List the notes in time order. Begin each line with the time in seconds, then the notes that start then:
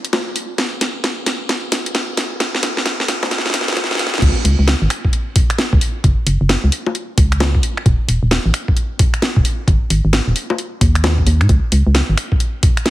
0.05 closed hi-hat
0.13 kick, snare, closed hi-hat, high bongo
0.36 open hi-hat
0.58 kick, snare, closed hi-hat
0.81 snare, open hi-hat
1.04 kick, snare, closed hi-hat
1.26 snare, open hi-hat
1.49 kick, snare, closed hi-hat
1.72 snare, open hi-hat
1.86 closed hi-hat
1.95 kick, snare, closed hi-hat
2.17 snare, open hi-hat
2.40 kick, snare, closed hi-hat
2.55 snare
2.63 snare, open hi-hat
2.77 snare
2.86 kick, snare, closed hi-hat
3.00 snare
3.08 snare, open hi-hat
3.23 snare, closed hi-hat, high bongo
3.31 kick, snare, closed hi-hat
3.38 snare
3.46 snare
3.50 snare
3.54 snare, open hi-hat
3.61 snare
3.68 snare, closed hi-hat
3.72 snare
3.77 kick, snare, closed hi-hat, high bongo
3.84 snare
3.91 snare
3.95 snare
3.99 snare, open hi-hat
4.07 snare
4.14 snare
4.18 snare
4.22 C#2, kick, closed hi-hat, crash
4.45 C#2, open hi-hat
4.59 C#2
4.68 snare, closed hi-hat
4.82 G#1
4.90 finger snap, open hi-hat
5.05 kick
5.13 closed hi-hat
5.36 kick, open hi-hat
5.50 finger snap, closed hi-hat
5.58 snare, closed hi-hat
5.73 C#2, kick
5.81 open hi-hat
6.04 F#1, kick, closed hi-hat
6.27 F#1, open hi-hat
6.41 F#1
6.49 snare, closed hi-hat
6.64 C#2
6.72 open hi-hat
6.86 high bongo
6.95 closed hi-hat
7.18 C#2, kick, open hi-hat
7.32 finger snap, closed hi-hat
7.40 snare, closed hi-hat, high bongo
7.55 kick
7.63 open hi-hat
7.77 finger snap
7.86 D#1, kick, closed hi-hat
8.08 D#1, open hi-hat
8.23 D#1
8.31 snare, closed hi-hat
8.46 A1
8.54 finger snap, open hi-hat
8.68 kick
8.77 closed hi-hat
8.99 kick, open hi-hat
9.14 finger snap, closed hi-hat
9.22 snare, closed hi-hat
9.36 D#1, kick
9.45 open hi-hat
9.68 G#1, kick, closed hi-hat
9.90 G#1, open hi-hat
10.05 G#1
10.13 snare, closed hi-hat
10.27 D#1
10.36 open hi-hat
10.50 high bongo
10.58 closed hi-hat
10.81 D#2, kick, open hi-hat
10.95 finger snap, closed hi-hat
11.04 snare, closed hi-hat, high bongo
11.18 kick
11.27 D#2, open hi-hat
11.41 G#2, finger snap, closed hi-hat
11.49 C#2, kick, closed hi-hat
11.72 C#2, open hi-hat
11.87 C#2
11.95 snare, closed hi-hat
12.09 G#1
12.18 finger snap, open hi-hat
12.32 kick
12.40 closed hi-hat
12.63 kick, open hi-hat
12.77 finger snap, closed hi-hat
12.86 snare, closed hi-hat